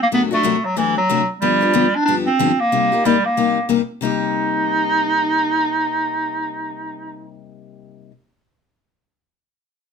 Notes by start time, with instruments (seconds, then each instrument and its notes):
0.02 clarinet A#3
0.12 steel-string acoustic guitar F#2 C3 F#3 A3 D4 F#4, clarinet B3
0.31 steel-string acoustic guitar F#3 A3 D4 F#4, clarinet A3
0.43 steel-string acoustic guitar F#2 C3 F#3 A3 D4 F#4
0.65 clarinet F#3
0.76 steel-string acoustic guitar F#2 C3 F#3 A3 D4 F#4, clarinet E3
0.97 clarinet F#3
1.09 steel-string acoustic guitar F#2 C3 F#3 A3 D4 F#4
1.41 steel-string acoustic guitar G2 D3 F3 B3 D4 G4, clarinet G3
1.61 steel-string acoustic guitar F3 B3 D4 G4
1.74 steel-string acoustic guitar G2 D3 F3 B3 D4 G4
1.96 clarinet D4
2.05 steel-string acoustic guitar G2 D3 F3 B3 D4 G4, clarinet D4
2.26 clarinet C4
2.39 steel-string acoustic guitar G2 D3 F3 B3 D4 G4
2.60 clarinet A#3
2.72 steel-string acoustic guitar C3 G3 A#3 D#4 G4
2.92 steel-string acoustic guitar A#3 D#4 G4
3.05 steel-string acoustic guitar C3 G3 A#3 D#4 G4, clarinet G3
3.25 clarinet A#3
3.37 steel-string acoustic guitar C3 G3 A#3 D#4 G4
3.69 steel-string acoustic guitar C3 G3 A#3 D#4 G4
4.01 steel-string acoustic guitar C3 G3 A#3 D#4 G4, clarinet D#4